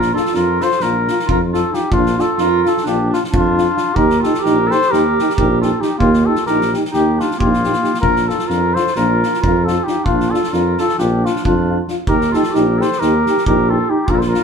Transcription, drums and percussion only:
0.01 snare
0.16 snare
0.25 snare
0.34 snare
0.61 snare
0.71 snare
0.80 snare
1.08 snare
1.19 snare
1.29 kick
1.54 snare
1.74 snare
1.92 kick
2.06 snare
2.19 snare
2.38 snare
2.66 snare
2.77 snare
2.86 snare
3.13 snare
3.24 snare
3.34 kick
3.58 snare
3.77 snare
3.96 kick
4.10 snare
4.23 snare
4.34 snare
4.45 snare
4.71 snare
4.81 snare
4.93 snare
5.19 snare
5.30 snare
5.38 kick
5.62 snare
5.82 snare
6.00 kick
6.13 snare
6.35 snare
6.46 snare
6.61 snare
6.74 snare
6.85 snare
6.93 snare
7.20 snare
7.31 snare
7.40 kick
7.53 snare
7.64 snare
7.73 snare
7.84 snare
7.94 snare
8.03 kick
8.16 snare
8.29 snare
8.39 snare
8.50 snare
8.76 snare
8.87 snare
8.95 snare
9.23 snare
9.34 snare
9.44 kick
9.67 snare
9.87 snare
10.06 kick
10.20 snare
10.34 snare
10.43 snare
10.53 snare
10.78 snare
10.88 snare
10.98 snare
11.26 snare
11.36 snare
11.45 kick
11.88 snare
12.07 kick
12.21 snare
12.34 snare
12.43 snare
12.55 snare
12.81 snare
12.92 snare
13.01 snare
13.26 snare
13.37 snare
13.46 kick
14.08 kick
14.21 snare
14.34 snare

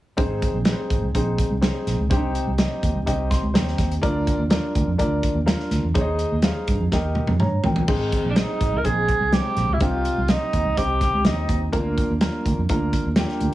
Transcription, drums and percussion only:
0.18 kick, closed hi-hat
0.42 kick, closed hi-hat
0.65 snare, closed hi-hat
0.90 kick, closed hi-hat
1.15 kick, closed hi-hat
1.38 kick, closed hi-hat
1.63 snare, closed hi-hat
1.87 snare, closed hi-hat
2.11 kick, closed hi-hat
2.35 closed hi-hat
2.58 snare, closed hi-hat
2.83 kick, closed hi-hat
3.07 kick, closed hi-hat
3.31 kick, snare, closed hi-hat
3.55 snare, closed hi-hat
3.68 snare
3.78 kick, snare, closed hi-hat
3.92 closed hi-hat
4.03 kick, closed hi-hat
4.27 kick, closed hi-hat
4.50 snare, closed hi-hat
4.75 kick, closed hi-hat
4.99 kick, closed hi-hat
5.23 kick, closed hi-hat
5.48 snare, closed hi-hat
5.60 snare
5.71 snare, closed hi-hat
5.95 kick, closed hi-hat
6.19 closed hi-hat
6.42 snare, closed hi-hat
6.68 kick, closed hi-hat
6.92 kick, snare
7.15 high tom
7.27 high tom
7.40 mid tom
7.64 floor tom
7.76 floor tom
7.88 kick, crash
8.12 kick, closed hi-hat
8.36 snare, closed hi-hat
8.61 kick, closed hi-hat
8.85 kick, closed hi-hat
9.08 kick, closed hi-hat
9.33 snare, closed hi-hat
9.56 snare, closed hi-hat
9.80 kick, closed hi-hat
10.05 closed hi-hat
10.28 snare, closed hi-hat
10.53 kick, closed hi-hat
10.77 kick, closed hi-hat
11.01 kick, snare, closed hi-hat
11.25 snare, closed hi-hat
11.49 kick, closed hi-hat
11.73 kick, closed hi-hat
11.98 kick, closed hi-hat
12.21 snare, closed hi-hat
12.46 kick, closed hi-hat
12.69 kick, closed hi-hat
12.93 kick, closed hi-hat
13.16 snare, closed hi-hat
13.29 snare
13.40 closed hi-hat

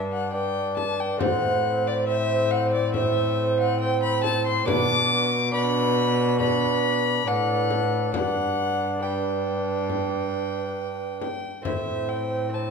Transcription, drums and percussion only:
0.77 frame drum
1.21 frame drum
2.94 frame drum
4.24 frame drum
4.68 frame drum
6.40 frame drum
7.71 frame drum
8.14 frame drum
9.89 frame drum
11.22 frame drum
11.65 frame drum

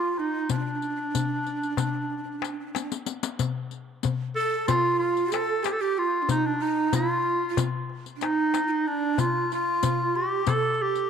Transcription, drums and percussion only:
0.17 darbuka ka
0.49 riq, darbuka dum
0.82 riq, darbuka ka
1.15 riq, darbuka dum
1.46 riq, darbuka ka
1.62 riq, darbuka ka
1.77 riq, darbuka dum
2.10 darbuka ka
2.25 darbuka ka
2.42 riq, darbuka tek
2.75 riq, darbuka tek
2.92 riq
3.06 riq, darbuka ka
3.23 riq
3.39 riq, darbuka dum
3.71 riq, darbuka ka
4.03 riq, darbuka dum
4.68 riq, darbuka dum
5.01 darbuka ka
5.17 riq, darbuka ka
5.32 riq, darbuka tek
5.64 riq, darbuka tek
6.29 riq, darbuka dum
6.61 darbuka ka
6.93 riq, darbuka dum
7.57 riq, darbuka dum
7.90 darbuka ka
8.06 riq, darbuka ka
8.21 riq, darbuka tek
8.54 riq, darbuka tek
9.18 riq, darbuka dum
9.52 riq, darbuka ka
9.83 riq, darbuka dum
10.47 riq, darbuka dum
10.80 darbuka ka
10.95 riq, darbuka ka

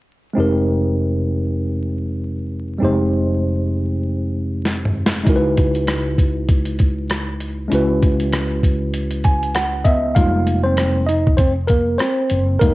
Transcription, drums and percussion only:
4.65 snare
4.85 mid tom
5.06 snare
5.27 kick, closed hi-hat
5.57 kick, closed hi-hat
5.75 closed hi-hat
5.87 cross-stick, closed hi-hat
6.18 kick, closed hi-hat
6.49 kick, closed hi-hat
6.65 closed hi-hat
6.79 kick, closed hi-hat
7.10 cross-stick, closed hi-hat
7.40 closed hi-hat
7.72 closed hi-hat
8.03 kick, closed hi-hat
8.20 closed hi-hat
8.33 cross-stick, closed hi-hat
8.63 kick, closed hi-hat
8.94 closed hi-hat
9.11 closed hi-hat
9.24 kick, closed hi-hat
9.43 closed hi-hat
9.55 cross-stick, closed hi-hat
9.85 kick, closed hi-hat
10.16 kick, closed hi-hat
10.47 closed hi-hat
10.77 cross-stick, closed hi-hat
11.09 closed hi-hat
11.27 kick
11.38 kick, closed hi-hat
11.68 kick, closed hi-hat
11.99 cross-stick, closed hi-hat
12.30 closed hi-hat
12.61 kick, closed hi-hat

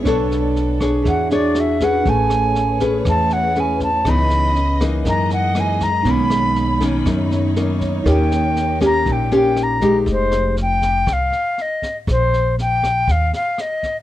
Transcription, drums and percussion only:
0.05 kick, cross-stick, snare
0.31 snare
0.56 snare
0.80 kick, cross-stick, snare
1.05 kick, snare
1.30 snare
1.55 cross-stick, snare
1.80 kick, snare
2.05 kick, snare
2.30 cross-stick, snare
2.55 snare
2.80 kick, snare
3.05 kick, cross-stick, snare
3.30 snare
3.55 snare
3.80 kick, snare
4.05 kick, cross-stick, snare
4.30 snare
4.55 snare
4.80 kick, cross-stick, snare
5.05 kick, snare
5.30 snare
5.55 cross-stick, snare
5.80 kick, snare
6.05 kick, snare
6.30 cross-stick, snare
6.56 snare
6.81 kick, snare
7.06 kick, cross-stick, snare
7.31 snare
7.56 snare
7.81 kick, snare
8.06 kick, cross-stick, snare
8.31 snare
8.56 snare
8.81 kick, cross-stick, snare
9.06 kick, snare
9.31 snare
9.56 cross-stick, snare
9.81 kick, snare
10.06 kick, snare
10.31 cross-stick, snare
10.56 snare
10.82 kick, snare
11.07 kick, cross-stick, snare
11.32 snare
11.58 snare
11.82 kick, snare
12.07 kick, cross-stick, snare
12.33 snare
12.58 snare
12.83 kick, cross-stick, snare
13.08 kick, snare
13.33 snare
13.58 cross-stick, snare
13.83 kick, snare

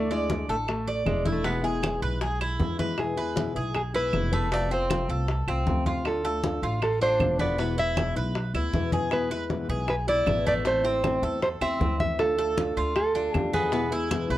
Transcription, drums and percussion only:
0.11 high bongo, high conga
0.30 high bongo, high conga
0.68 high bongo, high conga, claves
0.87 high bongo, high conga
1.07 high bongo, low bongo, high conga, claves
1.26 high bongo, high conga
1.45 high bongo, high conga
1.64 high bongo, high conga
1.83 high bongo, high conga, claves
2.03 high conga
2.21 high bongo, high conga
2.40 high bongo, high conga, claves
2.60 high bongo, low bongo, high conga
2.79 high bongo, high conga
2.98 high bongo, high conga, claves
3.17 high bongo, high conga
3.36 high bongo, high conga
3.75 high bongo, high conga, claves
3.94 high bongo, high conga
4.13 high bongo, low bongo, high conga, claves
4.33 high bongo, high conga
4.52 high bongo, high conga
4.71 high bongo, high conga
4.90 high bongo, high conga, claves
5.09 high conga
5.28 high bongo, high conga
5.48 high bongo, high conga, claves
5.67 high bongo, low bongo, high conga
5.86 high bongo, high conga
6.05 high bongo, high conga, claves
6.24 high bongo, high conga
6.43 high bongo, high conga
6.82 high bongo, high conga, claves
7.01 high bongo, high conga
7.20 high bongo, low bongo, high conga, claves
7.39 high bongo, high conga
7.59 high bongo, high conga
7.78 high bongo, high conga
7.97 high bongo, high conga, claves
8.16 high conga
8.35 high bongo, high conga
8.54 high bongo, high conga, claves
8.74 high bongo, low bongo, high conga
8.93 high bongo, high conga
9.12 high bongo, high conga, claves
9.31 high bongo, high conga
9.50 high bongo, high conga
9.88 high bongo, high conga, claves
10.08 high bongo, high conga
10.27 high bongo, low bongo, high conga, claves
10.46 high bongo, high conga
10.65 high bongo, high conga
10.84 high bongo, high conga
11.04 high bongo, high conga, claves
11.23 high conga
11.43 high bongo, high conga
11.62 high bongo, high conga, claves
11.81 high bongo, low bongo, high conga
12.00 high bongo, high conga
12.19 high bongo, high conga, claves
12.38 high bongo, high conga
12.57 high bongo, high conga
12.96 high bongo, high conga, claves
13.15 high bongo, high conga
13.34 high bongo, low bongo, high conga, claves
13.53 high bongo, high conga
13.72 high bongo, high conga
13.92 high bongo, high conga
14.11 high bongo, high conga, claves
14.30 high conga

